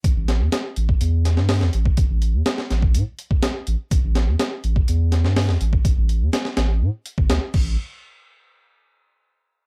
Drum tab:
CC |----------------|----------------|----------------|--------------x-|
HH |x-x-x-x-x-x-o-x-|x-x-x-x-x-x-x-x-|x-x-x-x-x-x-o-x-|x-x-x-x---x-x---|
SD |--o-o-----oooo--|----ooo-----o---|--o-o-----oooo--|----ooo-----o---|
BD |o------o-------o|o------o---o----|o------o-------o|o----------o--o-|

CC |----------------|
HH |----------------|
SD |----------------|
BD |----------------|